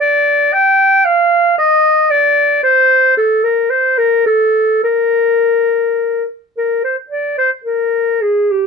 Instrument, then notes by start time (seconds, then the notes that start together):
clarinet
0.00 D5
0.53 G5
1.05 F5
1.58 D#5
2.10 D5
2.63 C5
3.17 A4
3.44 A#4
3.70 C5
3.98 A#4
4.26 A4
4.83 A#4
6.57 A#4
6.84 C5
7.10 D5
7.38 C5
7.64 A#4
8.21 G#4
8.51 G4